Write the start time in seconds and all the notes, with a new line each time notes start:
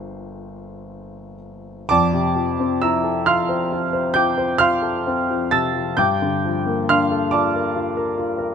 Already playing: G1 F3 A#3 D4 A4 C5 G5 C6
1.89 F2 D5 A5 D6
2.13 C3
2.35 F3
2.60 C4
2.82 E4 E5 A#5 E6
3.04 A4
3.26 F4 F5 C6 F6
3.49 C5
3.72 F4
3.93 C5
4.14 F4 G5 D6 G6
4.38 C5
4.58 F4 F5 C6 F6
4.82 A4
5.07 C4
5.30 F3
5.51 C3 A5 E6 A6
5.75 F3
5.97 G2 G5 D6 G6
6.22 D3
6.45 F3
6.66 A#3
6.89 D4 F5 C6 F6
7.11 A4
7.31 F4 D5 A5 D6
7.56 A#4
7.75 F4
7.97 A#4
8.18 F4
8.38 A#4